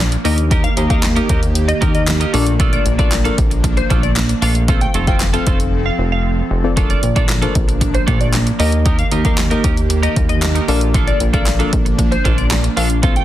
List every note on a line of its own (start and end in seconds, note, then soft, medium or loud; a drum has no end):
0.00 0.17 A#1 loud
0.00 0.23 F3 medium
0.00 0.23 A#3 medium
0.00 0.23 D4 medium
0.00 snare loud
0.12 muted clean electric guitar stroke medium
0.12 closed hi-hat medium
0.25 0.69 D#2 loud
0.25 2.32 D#3 medium
0.25 0.45 A#3 medium
0.25 0.77 A#3 medium
0.25 4.64 A#3 medium
0.25 0.77 D#4 medium
0.25 0.37 D#4 medium
0.25 0.77 G4 medium
0.25 2.32 G4 medium
0.25 0.37 G4 loud
0.25 0.77 A#4 medium
0.25 0.37 A#4 loud
0.25 0.34 D#5 medium
0.25 0.77 D#5 medium
0.25 open hi-hat medium
0.38 muted clean electric guitar stroke soft
0.38 closed hi-hat medium
0.51 0.71 A#3 medium
0.51 0.64 D#4 medium
0.51 0.63 G4 loud
0.51 0.63 A#4 loud
0.51 kick loud
0.51 closed hi-hat medium
0.64 0.73 F5 medium
0.64 muted clean electric guitar stroke medium
0.64 closed hi-hat medium
0.77 1.21 D#2 medium
0.77 0.90 A#3 medium
0.77 0.90 D#4 medium
0.77 0.89 G4 medium
0.77 0.89 A#4 medium
0.77 closed hi-hat medium
0.90 1.07 A#3 medium
0.90 1.02 A#3 medium
0.90 1.07 D#4 medium
0.90 1.02 D#4 medium
0.90 1.07 G4 medium
0.90 1.02 G4 medium
0.90 1.03 A#4 medium
0.90 1.08 A#4 medium
0.90 1.08 D#5 medium
0.90 1.27 F5 medium
0.90 kick loud
0.90 closed hi-hat medium
1.03 muted clean electric guitar stroke soft
1.03 snare medium
1.03 clap loud
1.03 closed hi-hat medium
1.16 1.85 A#3 medium
1.16 1.28 A#3 medium
1.16 1.86 D#4 medium
1.16 1.28 D#4 medium
1.16 1.86 G4 medium
1.16 1.29 G4 medium
1.16 1.29 A#4 medium
1.16 1.86 A#4 medium
1.16 1.86 D#5 medium
1.16 closed hi-hat medium
1.29 1.73 D#2 medium
1.29 1.45 A#3 medium
1.29 1.42 D#4 medium
1.29 1.41 G4 medium
1.29 1.41 A#4 medium
1.29 kick loud
1.29 closed hi-hat medium
1.42 muted clean electric guitar stroke soft
1.42 closed hi-hat medium
1.55 closed hi-hat loud
1.68 1.77 D#5 medium
1.68 muted clean electric guitar stroke medium
1.68 closed hi-hat medium
1.81 2.25 D#2 loud
1.81 2.02 A#3 loud
1.81 1.94 D#4 medium
1.81 1.94 G4 loud
1.81 1.93 A#4 loud
1.81 kick medium
1.81 closed hi-hat medium
1.94 2.13 D#5 medium
1.94 muted clean electric guitar stroke soft
1.94 closed hi-hat soft
2.07 muted clean electric guitar stroke soft
2.07 snare medium
2.07 clap loud
2.07 closed hi-hat loud
2.20 2.33 A#3 medium
2.20 2.33 D#4 medium
2.20 2.34 G4 medium
2.20 2.34 A#4 medium
2.20 closed hi-hat medium
2.33 2.77 A#1 loud
2.33 4.66 F3 medium
2.33 2.54 A3 loud
2.33 2.86 D4 loud
2.33 2.46 D4 medium
2.33 4.66 D4 medium
2.33 2.86 F4 medium
2.33 2.46 F4 loud
2.33 2.86 A4 medium
2.33 2.45 A4 loud
2.33 2.86 A#4 medium
2.33 2.86 D5 loud
2.33 open hi-hat medium
2.46 muted clean electric guitar stroke soft
2.46 closed hi-hat medium
2.59 2.83 A3 medium
2.59 2.84 D4 medium
2.59 2.84 F4 loud
2.59 2.84 A4 loud
2.59 kick loud
2.59 closed hi-hat medium
2.73 2.82 D5 medium
2.73 closed hi-hat medium
2.85 3.29 A#1 medium
2.85 muted clean electric guitar stroke soft
2.85 closed hi-hat medium
2.98 3.11 A3 medium
2.98 3.16 D4 medium
2.98 3.11 D4 medium
2.98 3.16 F4 medium
2.98 3.11 F4 medium
2.98 3.12 A4 medium
2.98 3.16 A4 medium
2.98 3.16 A#4 medium
2.98 3.36 D5 medium
2.98 3.16 D5 medium
2.98 kick loud
2.98 closed hi-hat medium
3.12 muted clean electric guitar stroke medium
3.12 snare medium
3.12 clap loud
3.12 closed hi-hat medium
3.25 3.37 A3 medium
3.25 3.94 D4 medium
3.25 3.37 D4 medium
3.25 3.94 F4 medium
3.25 3.37 F4 medium
3.25 3.37 A4 medium
3.25 3.94 A4 medium
3.25 3.94 A#4 medium
3.25 3.95 D5 medium
3.25 closed hi-hat medium
3.38 3.82 A#1 medium
3.38 muted clean electric guitar stroke soft
3.38 kick loud
3.38 closed hi-hat medium
3.51 muted clean electric guitar stroke medium
3.51 closed hi-hat medium
3.64 muted clean electric guitar stroke soft
3.64 kick loud
3.64 closed hi-hat loud
3.77 3.86 C5 medium
3.77 muted clean electric guitar stroke medium
3.77 closed hi-hat medium
3.90 4.34 A#1 loud
3.90 4.10 A3 medium
3.90 4.03 D4 medium
3.90 4.02 F4 loud
3.90 4.02 A4 loud
3.90 kick loud
3.90 closed hi-hat medium
4.03 4.12 D5 medium
4.03 muted clean electric guitar stroke medium
4.03 closed hi-hat soft
4.16 snare medium
4.16 clap loud
4.16 closed hi-hat loud
4.29 muted clean electric guitar stroke soft
4.29 closed hi-hat medium
4.42 4.86 A#1 loud
4.42 4.63 A3 medium
4.42 4.55 D4 medium
4.42 4.55 F4 medium
4.42 4.54 A4 medium
4.42 4.51 F5 medium
4.42 open hi-hat medium
4.55 muted clean electric guitar stroke soft
4.55 closed hi-hat medium
4.68 6.75 F3 medium
4.68 4.89 A3 medium
4.68 4.94 C4 medium
4.68 6.75 C4 medium
4.68 4.81 C4 medium
4.68 4.94 F4 medium
4.68 4.81 F4 medium
4.68 4.94 A4 medium
4.68 6.75 A4 medium
4.68 4.80 A4 medium
4.68 4.94 C5 medium
4.68 4.94 F5 medium
4.68 kick loud
4.68 closed hi-hat medium
4.81 4.90 G5 medium
4.81 muted clean electric guitar stroke soft
4.81 closed hi-hat medium
4.94 5.38 F1 medium
4.94 5.07 A3 medium
4.94 5.07 C4 medium
4.94 5.07 F4 medium
4.94 5.06 A4 medium
4.94 closed hi-hat medium
5.07 5.19 A3 medium
5.07 5.25 C4 medium
5.07 5.20 C4 medium
5.07 5.25 F4 medium
5.07 5.20 F4 medium
5.07 5.20 A4 medium
5.07 5.25 A4 medium
5.07 5.25 C5 medium
5.07 5.25 F5 medium
5.07 5.44 G5 medium
5.07 kick loud
5.07 closed hi-hat medium
5.20 snare medium
5.20 clap loud
5.20 closed hi-hat loud
5.33 5.45 A3 medium
5.33 6.03 C4 medium
5.33 5.46 C4 medium
5.33 6.03 F4 medium
5.33 5.46 F4 medium
5.33 5.46 A4 medium
5.33 6.03 A4 medium
5.33 6.03 C5 medium
5.33 6.03 F5 medium
5.33 closed hi-hat medium
5.46 5.90 F1 medium
5.46 5.62 A3 medium
5.46 5.59 C4 medium
5.46 5.59 F4 medium
5.46 5.58 A4 medium
5.46 kick loud
5.46 closed hi-hat medium
5.59 muted clean electric guitar stroke soft
5.59 closed hi-hat medium
5.86 5.95 F5 medium
5.99 6.42 F1 loud
6.12 6.30 F5 medium
6.51 6.95 F1 loud
6.64 6.73 C4 medium
6.64 6.73 F4 medium
6.64 6.73 A4 medium
6.64 6.73 C5 medium
6.64 6.73 D5 loud
6.77 8.58 F3 medium
6.77 7.01 A3 medium
6.77 12.99 A#3 medium
6.77 7.03 D4 medium
6.77 8.58 D4 medium
6.77 7.01 D4 medium
6.77 7.03 F4 medium
6.77 7.01 F4 medium
6.77 7.03 A4 medium
6.77 7.02 A4 medium
6.77 7.03 A#4 medium
6.77 7.03 D5 medium
6.77 kick loud
6.77 closed hi-hat medium
6.90 6.99 D5 medium
6.90 closed hi-hat medium
7.03 7.47 A#1 medium
7.03 muted clean electric guitar stroke soft
7.03 closed hi-hat medium
7.16 7.28 A3 medium
7.16 7.33 D4 medium
7.16 7.28 D4 medium
7.16 7.34 F4 medium
7.16 7.28 F4 medium
7.16 7.29 A4 medium
7.16 7.34 A4 medium
7.16 7.34 A#4 medium
7.16 7.53 D5 medium
7.16 7.34 D5 medium
7.16 kick loud
7.16 closed hi-hat medium
7.29 muted clean electric guitar stroke soft
7.29 snare medium
7.29 clap loud
7.29 closed hi-hat medium
7.42 7.54 A3 medium
7.42 8.12 D4 medium
7.42 7.54 D4 medium
7.42 8.12 F4 medium
7.42 7.54 F4 medium
7.42 7.55 A4 medium
7.42 8.12 A4 medium
7.42 8.12 A#4 medium
7.42 8.12 C5 medium
7.42 closed hi-hat medium
7.55 7.99 A#1 medium
7.55 kick loud
7.55 closed hi-hat medium
7.68 muted clean electric guitar stroke soft
7.68 closed hi-hat medium
7.81 muted clean electric guitar stroke medium
7.81 kick loud
7.81 closed hi-hat loud
7.94 8.04 C5 medium
7.94 muted clean electric guitar stroke soft
7.94 closed hi-hat medium
8.07 8.51 A#1 loud
8.07 8.28 A3 loud
8.07 8.20 D4 loud
8.07 8.19 F4 loud
8.07 8.19 A4 loud
8.07 kick medium
8.07 closed hi-hat medium
8.20 8.30 D5 medium
8.20 muted clean electric guitar stroke soft
8.20 closed hi-hat soft
8.33 snare medium
8.33 clap loud
8.33 closed hi-hat loud
8.46 muted clean electric guitar stroke soft
8.46 closed hi-hat medium
8.59 9.03 D#2 loud
8.59 10.66 D#3 medium
8.59 8.80 A#3 medium
8.59 9.12 A#3 medium
8.59 8.72 D#4 medium
8.59 9.12 D#4 medium
8.59 10.66 G4 medium
8.59 9.12 G4 medium
8.59 8.72 G4 loud
8.59 9.12 A#4 medium
8.59 8.71 A#4 loud
8.59 8.69 D#5 medium
8.59 9.12 D#5 medium
8.59 open hi-hat medium
8.72 muted clean electric guitar stroke medium
8.72 closed hi-hat medium
8.85 9.06 A#3 medium
8.85 8.98 D#4 medium
8.85 8.98 G4 medium
8.85 8.97 A#4 medium
8.85 kick loud
8.85 closed hi-hat medium
8.99 9.08 F5 medium
8.99 muted clean electric guitar stroke soft
8.99 closed hi-hat medium
9.11 9.56 D#2 medium
9.11 9.25 A#3 medium
9.11 9.24 D#4 medium
9.11 9.24 G4 medium
9.11 9.23 A#4 medium
9.11 closed hi-hat medium
9.25 9.42 A#3 medium
9.25 9.36 A#3 medium
9.25 9.42 D#4 medium
9.25 9.37 D#4 medium
9.25 9.42 G4 medium
9.25 9.37 G4 medium
9.25 9.37 A#4 medium
9.25 9.42 A#4 medium
9.25 9.42 D#5 medium
9.25 9.62 F5 medium
9.25 kick loud
9.25 closed hi-hat medium
9.38 muted clean electric guitar stroke soft
9.38 snare medium
9.38 clap loud
9.38 closed hi-hat medium
9.50 10.20 A#3 medium
9.50 9.62 A#3 medium
9.50 10.20 D#4 medium
9.50 9.63 D#4 medium
9.50 10.20 G4 medium
9.50 9.63 G4 medium
9.50 9.64 A#4 medium
9.50 10.20 A#4 medium
9.50 10.20 D#5 medium
9.50 closed hi-hat medium
9.63 10.08 D#2 medium
9.63 9.80 A#3 medium
9.63 9.76 D#4 medium
9.63 9.76 G4 medium
9.63 9.75 A#4 medium
9.63 kick loud
9.63 closed hi-hat medium
9.77 muted clean electric guitar stroke soft
9.77 closed hi-hat medium
9.90 muted clean electric guitar stroke soft
9.90 closed hi-hat loud
10.03 10.15 A#3 medium
10.03 10.15 D#4 medium
10.03 10.15 G4 medium
10.03 10.16 A#4 loud
10.03 10.12 D#5 medium
10.03 closed hi-hat medium
10.16 10.60 D#2 loud
10.16 muted clean electric guitar stroke soft
10.16 kick medium
10.16 closed hi-hat medium
10.29 10.47 D#5 medium
10.29 muted clean electric guitar stroke soft
10.29 closed hi-hat soft
10.42 muted clean electric guitar stroke soft
10.42 snare medium
10.42 clap loud
10.42 closed hi-hat loud
10.55 10.67 A#3 medium
10.55 10.68 D#4 medium
10.55 10.69 G4 medium
10.55 10.69 A#4 medium
10.55 closed hi-hat medium
10.68 11.12 A#1 loud
10.68 10.89 F3 medium
10.68 13.01 F3 medium
10.68 10.81 A#3 loud
10.68 11.20 D4 loud
10.68 13.01 D4 medium
10.68 10.80 D4 medium
10.68 11.20 F4 medium
10.68 11.20 A4 medium
10.68 10.80 A4 loud
10.68 11.21 A#4 medium
10.68 11.21 D5 loud
10.68 open hi-hat medium
10.81 muted clean electric guitar stroke medium
10.81 closed hi-hat medium
10.94 11.18 F3 medium
10.94 11.18 A#3 medium
10.94 11.19 D4 medium
10.94 11.19 A4 loud
10.94 kick loud
10.94 closed hi-hat medium
11.07 11.17 D5 medium
11.07 closed hi-hat medium
11.20 11.64 A#1 medium
11.20 muted clean electric guitar stroke soft
11.20 closed hi-hat medium
11.33 11.45 F3 medium
11.33 11.46 A#3 medium
11.33 11.51 D4 medium
11.33 11.46 D4 medium
11.33 11.51 F4 medium
11.33 11.46 A4 medium
11.33 11.51 A4 medium
11.33 11.51 A#4 medium
11.33 11.70 D5 medium
11.33 11.51 F5 medium
11.33 kick loud
11.33 closed hi-hat medium
11.46 muted clean electric guitar stroke soft
11.46 snare medium
11.46 clap loud
11.46 closed hi-hat loud
11.59 11.71 F3 medium
11.59 11.72 A#3 medium
11.59 12.29 D4 medium
11.59 11.72 D4 medium
11.59 12.29 F4 medium
11.59 11.72 A4 loud
11.59 12.29 A4 medium
11.59 12.29 A#4 medium
11.59 12.29 D5 medium
11.59 closed hi-hat medium
11.72 12.17 A#1 medium
11.72 muted clean electric guitar stroke soft
11.72 kick loud
11.72 closed hi-hat medium
11.85 muted clean electric guitar stroke medium
11.85 closed hi-hat medium
11.99 muted clean electric guitar stroke soft
11.99 kick loud
11.99 closed hi-hat loud
12.11 12.21 C5 medium
12.11 muted clean electric guitar stroke medium
12.11 closed hi-hat medium
12.24 12.69 A#1 medium
12.24 12.45 F3 medium
12.24 12.37 A#3 medium
12.24 12.37 D4 medium
12.24 12.37 A4 loud
12.24 kick medium
12.24 closed hi-hat medium
12.38 12.47 D5 medium
12.38 muted clean electric guitar stroke soft
12.38 closed hi-hat soft
12.51 snare medium
12.51 clap loud
12.51 closed hi-hat loud
12.64 muted clean electric guitar stroke medium
12.64 closed hi-hat medium
12.77 13.21 A#1 loud
12.77 12.97 F3 medium
12.77 12.89 A#3 medium
12.77 12.89 D4 loud
12.77 12.88 A4 loud
12.77 12.86 F5 medium
12.77 open hi-hat medium
12.90 muted clean electric guitar stroke soft
12.90 closed hi-hat medium
13.02 13.25 F3 medium
13.02 13.23 A3 medium
13.02 13.25 C4 medium
13.02 13.16 C4 medium
13.02 13.25 F4 medium
13.02 13.15 F4 medium
13.02 13.25 A4 medium
13.02 13.15 A4 medium
13.02 13.25 C5 medium
13.02 13.25 F5 medium
13.02 kick loud
13.02 closed hi-hat medium
13.16 13.25 G5 medium
13.16 muted clean electric guitar stroke soft
13.16 closed hi-hat medium